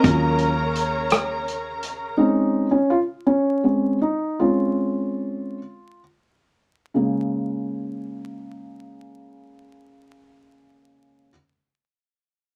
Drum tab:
HH |xxxxxx|------|------|------|
SD |---r--|------|------|------|
BD |o-----|------|------|------|

HH |------|
SD |------|
BD |------|